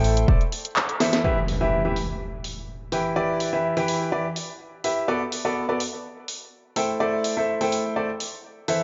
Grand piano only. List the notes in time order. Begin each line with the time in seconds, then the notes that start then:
Already playing: A3 E4 A4 C5 G5
0.28 A3 E4 A4 C5 D5
1.00 E3 E4 A4 C5 E5
1.24 E3 E4 G4 B4 E5
1.61 E3 E4 G4 B4 E5
1.85 E3 E4 G4 B4 E5
2.92 E3 E4 G4 B4 G5
3.16 E3 E4 G4 B4 D5
3.53 E3 E4 G4 B4 E5
3.77 E3 E4 G4 B4 G5
4.12 E3 E4 G4 B4 D5
4.84 E4 G4 B4 E5
5.08 B3 F#4 A4 B4 D5
5.45 B3 F#4 A4 B4 D5
5.69 B3 F#4 A4 B4 D5
6.76 A3 E4 A4 C5 G5
7.00 A3 E4 A4 C5 D5
7.37 A3 E4 A4 C5 E5
7.61 A3 E4 A4 C5 G5
7.96 A3 E4 A4 C5 D5
8.68 E3 E4 A4 C5 E5